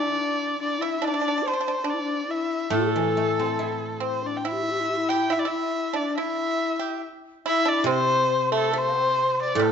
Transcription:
0.00 1.87 E3 medium
0.00 0.16 G3 medium
0.00 0.55 D4 medium
0.00 0.76 D4 medium
0.00 0.61 D5 medium
0.60 0.80 D4 medium
0.60 0.83 D5 medium
0.79 1.00 E4 medium
0.79 1.01 E4 medium
0.79 1.07 E5 medium
0.98 1.44 D4 medium
0.98 1.06 D4 medium
1.05 1.13 D4 medium
1.05 1.49 D5 medium
1.14 1.20 D4 medium
1.21 1.27 D4 medium
1.28 1.37 D4 medium
1.38 1.45 D4 soft
1.43 1.85 C5 medium
1.48 1.52 D4 soft
1.48 1.91 C5 medium
1.53 1.59 D4 soft
1.61 1.67 D4 medium
1.68 1.75 D4 medium
1.84 2.68 D4 medium
1.84 1.95 D4 medium
1.90 2.32 D5 medium
1.94 2.02 E4 medium
2.01 2.26 D4 medium
2.27 2.68 E4 medium
2.27 2.75 E5 medium
2.70 5.31 A2 medium
2.70 3.97 A3 medium
2.70 4.03 A4 medium
2.70 3.79 A4 medium
2.96 4.69 E3 soft
3.17 4.90 A3 soft
3.39 5.12 C4 soft
3.59 5.32 E4 soft
4.00 4.42 C4 medium
4.00 4.23 C5 medium
4.04 4.28 C5 medium
4.25 4.48 D4 medium
4.25 4.39 D5 medium
4.37 4.49 G5 medium
4.45 5.06 E4 medium
4.45 4.54 E4 medium
4.45 5.10 E5 medium
4.52 4.65 G4 medium
4.63 4.73 E4 medium
4.71 4.82 G4 medium
4.80 4.91 E4 medium
4.90 4.99 G4 medium
4.97 5.34 E4 medium
5.09 5.30 G4 medium
5.09 5.34 G5 medium
5.30 5.44 E4 medium
5.30 5.41 E5 medium
5.36 5.47 E4 medium
5.36 5.49 D5 medium
5.45 5.92 E4 medium
5.45 5.97 E5 medium
5.51 6.00 E4 medium
5.93 6.15 D4 medium
5.93 6.18 D5 medium
5.99 6.21 D4 medium
6.18 6.78 E4 medium
6.18 7.04 E4 medium
6.18 6.99 E5 medium
6.79 7.00 G4 medium
7.46 7.65 E4 medium
7.46 7.89 E4 medium
7.46 7.71 E5 loud
7.65 7.86 D4 medium
7.65 7.89 D5 loud
7.84 9.57 C3 medium
7.84 8.47 C4 medium
7.84 8.53 C5 loud
7.90 8.49 C5 loud
8.52 8.72 A3 medium
8.52 8.74 A4 medium
8.57 8.80 A4 medium
8.73 8.99 A3 medium
8.73 9.56 C5 medium
8.78 9.40 C5 loud
8.99 9.55 C4 medium
9.43 9.64 D5 medium
9.55 9.72 A2 medium
9.55 9.72 A4 medium
9.59 9.72 G3 medium
9.59 9.72 A4 medium

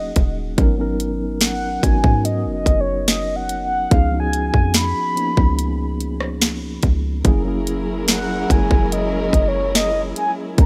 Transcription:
0.00 0.12 D#1 loud
0.00 0.57 F#3 medium
0.00 0.60 A#3 medium
0.00 0.58 C#4 medium
0.00 0.59 D#4 medium
0.00 0.60 G#4 medium
0.00 0.38 D#5 medium
0.16 0.56 D#1 loud
0.16 kick medium
0.16 closed hi-hat medium
0.57 1.79 G#1 loud
0.57 0.73 F#3 medium
0.57 0.74 B3 medium
0.57 0.74 C#4 medium
0.57 0.74 D#4 medium
0.57 0.75 A#4 loud
0.57 kick loud
0.57 closed hi-hat medium
0.78 1.57 F#3 medium
0.78 1.58 B3 medium
0.78 1.58 C#4 medium
0.78 1.58 D#4 medium
0.78 1.59 A#4 loud
1.00 closed hi-hat medium
1.41 1.85 F#5 loud
1.41 snare loud
1.41 closed hi-hat medium
1.82 2.03 G#1 loud
1.82 3.09 F#3 medium
1.82 3.09 B3 medium
1.82 3.10 C#4 medium
1.82 3.10 D#4 medium
1.82 3.10 F#4 medium
1.82 2.26 G#5 loud
1.82 kick loud
1.82 closed hi-hat medium
2.04 2.47 G#2 loud
2.04 kick loud
2.25 2.52 D#5 medium
2.25 closed hi-hat medium
2.46 2.65 F#1 medium
2.52 2.82 D#5 loud
2.66 3.87 F#1 loud
2.66 kick medium
2.66 closed hi-hat medium
2.80 3.08 C#5 medium
3.08 3.37 D#5 medium
3.08 snare loud
3.08 closed hi-hat medium
3.36 3.64 F#5 loud
3.49 closed hi-hat medium
3.64 3.94 F#5 loud
3.90 4.51 C#2 loud
3.90 4.07 F3 medium
3.90 4.07 B3 medium
3.90 4.08 C#4 medium
3.90 4.08 D#4 medium
3.90 4.08 G#4 medium
3.90 4.19 F5 loud
3.90 kick loud
3.90 closed hi-hat medium
4.11 4.91 F3 medium
4.11 4.91 B3 medium
4.11 4.91 C#4 medium
4.11 4.92 D#4 medium
4.11 4.20 F#4 medium
4.20 4.96 G#4 medium
4.20 4.45 G#5 loud
4.33 closed hi-hat medium
4.48 4.73 G#5 loud
4.54 4.94 F2 loud
4.54 kick loud
4.74 5.96 B5 loud
4.74 snare loud
4.74 closed hi-hat medium
5.16 6.42 F3 medium
5.16 6.44 A#3 medium
5.16 6.43 B3 medium
5.16 6.43 C#4 medium
5.16 6.43 D#4 medium
5.16 closed hi-hat medium
5.37 6.79 C#2 loud
5.37 kick loud
5.59 closed hi-hat medium
6.01 closed hi-hat medium
6.21 cross-stick loud
6.41 snare loud
6.41 closed hi-hat medium
6.83 7.23 C#2 loud
6.83 kick medium
6.83 closed hi-hat medium
7.24 8.46 F#1 loud
7.24 7.40 F#3 medium
7.24 10.55 F#3 medium
7.24 7.40 A#3 medium
7.24 10.55 C#4 medium
7.24 7.41 C#4 medium
7.24 10.54 E4 medium
7.24 7.41 E4 medium
7.24 10.55 G#4 medium
7.24 7.42 G#4 loud
7.24 10.54 A#4 medium
7.24 kick loud
7.24 closed hi-hat medium
7.44 8.24 F#3 medium
7.44 8.24 A#3 medium
7.44 8.25 C#4 medium
7.44 8.25 E4 medium
7.44 8.26 G#4 loud
7.67 closed hi-hat medium
8.08 8.53 F#5 loud
8.08 snare loud
8.08 closed hi-hat medium
8.48 8.70 F#1 loud
8.48 9.75 F#3 medium
8.48 8.56 G#3 medium
8.48 9.76 C#4 medium
8.48 9.77 E4 medium
8.48 9.77 G#4 medium
8.48 8.94 G#5 loud
8.48 kick loud
8.48 closed hi-hat medium
8.56 9.79 A#3 medium
8.71 9.31 F#1 loud
8.71 kick loud
8.92 9.20 D#5 medium
8.92 closed hi-hat medium
9.20 9.49 D#5 medium
9.33 10.13 F#1 loud
9.33 kick medium
9.33 closed hi-hat medium
9.48 9.75 C#5 medium
9.75 10.01 D#5 loud
9.75 snare loud
9.75 closed hi-hat medium
10.16 10.31 G#5 loud
10.16 closed hi-hat medium
10.57 10.66 B1 loud
10.57 10.66 F#3 medium
10.57 10.66 B3 medium
10.57 10.66 C#4 medium
10.57 10.66 D#4 medium
10.57 10.66 A#4 medium
10.57 10.66 A#5 loud
10.57 kick loud
10.57 closed hi-hat medium

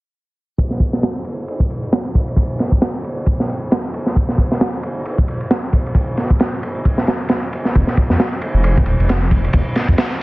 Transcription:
0.58 kick loud
0.58 ride medium
0.71 snare soft
0.80 kick medium
0.80 ride medium
0.93 snare soft
1.03 snare loud
1.03 ride medium
1.24 ride medium
1.48 ride medium
1.60 kick medium
1.70 ride medium
1.83 ride soft
1.93 snare loud
1.93 ride medium
2.15 kick medium
2.15 ride medium
2.28 ride soft
2.37 kick loud
2.37 ride medium
2.59 snare soft
2.59 ride medium
2.72 kick medium
2.82 snare loud
2.82 ride medium
3.04 ride medium
3.26 kick loud
3.26 ride medium
3.40 snare soft
3.49 ride medium
3.71 snare loud
3.71 ride medium
3.84 ride soft
3.94 ride medium
4.06 snare soft
4.16 kick loud
4.16 ride medium
4.29 snare soft
4.38 kick medium
4.38 ride medium
4.52 snare soft
4.61 snare loud
4.61 ride medium
4.83 ride medium
5.05 ride medium
5.18 kick loud
5.28 ride medium
5.41 ride soft
5.51 snare loud
5.51 ride medium
5.73 kick medium
5.73 ride medium
5.86 ride soft
5.95 kick medium
5.95 ride medium
6.17 snare soft
6.17 ride medium
6.30 kick medium
6.39 snare loud
6.39 ride medium
6.63 ride medium
6.85 kick medium
6.85 ride medium
6.98 snare medium
7.07 snare medium
7.07 ride medium
7.29 snare loud
7.29 ride medium
7.42 ride soft
7.53 ride medium
7.65 snare soft
7.75 7.83 F1 medium
7.75 kick loud
7.75 ride medium
7.87 snare soft
7.97 kick medium
7.97 ride medium
8.10 8.16 F2 medium
8.10 snare soft
8.19 snare loud
8.19 ride medium
8.41 ride medium
8.54 8.81 F1 loud
8.64 ride medium
8.78 kick medium
8.86 8.95 D#1 medium
8.86 ride medium
8.99 9.48 F1 medium
8.99 ride soft
9.09 snare loud
9.09 ride medium
9.31 kick medium
9.31 ride medium
9.44 ride soft
9.53 9.62 F1 medium
9.53 kick loud
9.53 ride medium
9.75 snare soft
9.75 ride medium
9.89 9.95 F2 medium
9.89 kick medium
9.98 snare loud
9.98 ride medium

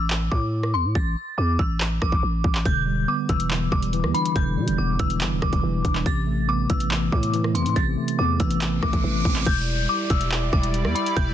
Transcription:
0.00 0.30 A1 loud
0.10 clap loud
0.31 0.76 A2 loud
0.31 0.71 D6 medium
0.31 kick medium
0.63 cross-stick medium
0.74 0.86 E2 loud
0.74 0.90 C6 medium
0.85 0.95 A2 loud
0.95 1.16 A1 loud
0.95 1.35 A6 loud
0.95 kick loud
1.38 1.58 E2 loud
1.38 1.54 D6 medium
1.59 2.00 A1 loud
1.59 1.75 E6 medium
1.59 kick medium
1.80 clap loud
2.02 2.12 A1 loud
2.02 2.62 D6 medium
2.02 kick medium
2.02 cross-stick medium
2.12 2.22 A1 loud
2.12 kick loud
2.23 2.43 A1 loud
2.44 2.65 A1 loud
2.44 kick loud
2.55 clap medium
2.65 3.06 E1 loud
2.65 3.72 D3 medium
2.65 3.06 G6 loud
2.65 kick loud
2.65 closed hi-hat medium
2.86 3.70 G3 medium
3.08 4.14 B3 medium
3.08 3.24 D6 medium
3.29 3.70 E1 loud
3.29 3.92 E3 medium
3.29 3.46 E6 medium
3.29 kick medium
3.29 closed hi-hat medium
3.40 closed hi-hat medium
3.51 clap loud
3.72 4.05 E1 loud
3.72 4.56 G3 medium
3.72 4.12 D6 medium
3.72 kick medium
3.82 closed hi-hat medium
3.93 4.99 E3 medium
3.93 closed hi-hat medium
4.04 4.14 E2 loud
4.04 cross-stick medium
4.14 5.21 D4 medium
4.14 4.31 B5 medium
4.14 closed hi-hat medium
4.25 closed hi-hat medium
4.35 4.59 E1 loud
4.35 5.42 D3 medium
4.35 4.76 G6 loud
4.35 kick loud
4.35 closed hi-hat medium
4.57 4.69 B2 loud
4.57 5.41 G3 medium
4.68 4.78 E1 loud
4.68 closed hi-hat medium
4.78 4.99 E1 loud
4.78 5.85 B3 medium
4.78 4.94 D6 medium
4.99 5.22 E1 loud
4.99 5.62 E3 medium
4.99 5.16 E6 medium
4.99 kick medium
4.99 closed hi-hat medium
5.10 closed hi-hat medium
5.21 5.33 G1 loud
5.21 clap loud
5.21 closed hi-hat medium
5.32 5.42 E1 loud
5.42 5.52 E1 loud
5.42 6.06 G3 medium
5.42 6.02 D6 medium
5.42 kick medium
5.42 cross-stick loud
5.53 5.63 E1 loud
5.53 kick loud
5.53 closed hi-hat medium
5.63 5.84 E1 loud
5.63 6.06 E3 medium
5.84 6.05 E1 loud
5.84 6.06 D4 medium
5.84 kick loud
5.84 closed hi-hat medium
5.95 clap medium
6.06 6.67 A1 loud
6.06 7.12 C3 loud
6.06 6.46 A6 loud
6.06 kick loud
6.06 closed hi-hat medium
6.27 7.11 A3 medium
6.48 7.55 B3 medium
6.48 6.65 D6 medium
6.70 7.11 A1 loud
6.70 7.32 E3 loud
6.70 6.86 E6 medium
6.70 kick loud
6.70 closed hi-hat medium
6.80 closed hi-hat medium
6.91 clap loud
7.12 7.56 A2 loud
7.12 7.96 A3 medium
7.12 7.52 D6 medium
7.12 kick medium
7.23 closed hi-hat medium
7.34 8.39 E3 medium
7.34 closed hi-hat medium
7.44 cross-stick medium
7.55 7.67 E2 loud
7.55 8.61 C4 medium
7.55 7.71 C6 medium
7.55 closed hi-hat medium
7.65 7.76 A2 loud
7.65 closed hi-hat medium
7.76 7.97 A1 loud
7.76 8.82 C3 medium
7.76 8.16 A6 loud
7.76 kick loud
7.76 closed hi-hat medium
7.97 8.81 A3 medium
8.08 closed hi-hat medium
8.18 8.39 E2 loud
8.18 9.25 B3 medium
8.18 8.35 D6 medium
8.40 8.81 A1 loud
8.40 9.03 E3 medium
8.40 8.56 E6 medium
8.40 kick medium
8.40 closed hi-hat medium
8.51 closed hi-hat medium
8.61 clap loud
8.61 closed hi-hat medium
8.61 reverse cymbal medium
8.82 8.93 A1 loud
8.82 9.46 A3 medium
8.82 9.43 D6 medium
8.82 kick medium
8.82 cross-stick loud
8.93 9.03 A1 loud
8.93 kick loud
8.93 closed hi-hat medium
9.04 9.24 A1 loud
9.04 9.46 E3 medium
9.25 9.46 A1 loud
9.25 9.47 C4 medium
9.25 kick loud
9.25 open hi-hat medium
9.36 clap medium
9.46 9.87 E1 loud
9.46 11.34 G3 medium
9.46 11.34 E4 medium
9.46 11.34 D5 medium
9.46 9.86 G6 loud
9.46 kick loud
9.46 closed hi-hat medium
9.46 crash loud
9.46 downlifter medium
9.89 10.05 D6 medium
10.10 10.51 E1 loud
10.10 10.26 E6 medium
10.10 kick loud
10.10 closed hi-hat medium
10.21 closed hi-hat medium
10.31 clap loud
10.53 10.86 E1 loud
10.53 10.93 D6 medium
10.53 kick loud
10.63 closed hi-hat medium
10.74 closed hi-hat medium
10.85 10.95 E2 loud
10.85 cross-stick medium
10.95 11.11 B5 medium
10.95 closed hi-hat medium
11.06 closed hi-hat medium
11.17 11.34 E1 loud
11.17 11.34 G6 loud
11.17 kick loud
11.17 closed hi-hat medium

